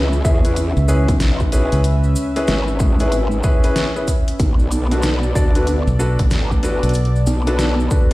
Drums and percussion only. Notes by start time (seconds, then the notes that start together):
0.13 cabasa
0.25 kick, cabasa
0.45 closed hi-hat, cabasa
0.56 closed hi-hat, cabasa
0.77 cabasa
0.88 cabasa
1.08 kick, closed hi-hat, cabasa
1.20 snare, closed hi-hat, cabasa
1.40 kick, cabasa
1.52 closed hi-hat, cabasa
1.72 closed hi-hat, cabasa
1.84 closed hi-hat, cabasa
2.04 cabasa
2.16 closed hi-hat, cabasa
2.36 snare, closed hi-hat, cabasa
2.47 snare, closed hi-hat, cabasa
2.68 cabasa
2.80 kick, cabasa
3.00 closed hi-hat, cabasa
3.12 closed hi-hat, cabasa
3.31 cabasa
3.43 kick, cabasa
3.63 closed hi-hat, cabasa
3.76 snare, closed hi-hat, cabasa
3.96 cabasa
4.08 kick, closed hi-hat, cabasa
4.28 closed hi-hat, cabasa
4.39 kick, closed hi-hat, cabasa
4.59 cabasa
4.71 closed hi-hat, cabasa
4.91 snare, closed hi-hat, cabasa
5.02 snare, closed hi-hat, cabasa
5.23 cabasa
5.35 kick, cabasa
5.55 closed hi-hat, cabasa
5.67 closed hi-hat, cabasa
5.87 cabasa
6.00 cabasa
6.19 kick, closed hi-hat, cabasa
6.31 snare, closed hi-hat, cabasa
6.51 kick, cabasa
6.63 closed hi-hat, cabasa
6.83 closed hi-hat, cabasa
6.89 closed hi-hat
6.94 closed hi-hat, cabasa
7.05 closed hi-hat
7.16 cabasa
7.27 closed hi-hat, cabasa
7.47 closed hi-hat, cabasa
7.59 snare, closed hi-hat, cabasa
7.80 cabasa
7.91 kick, cabasa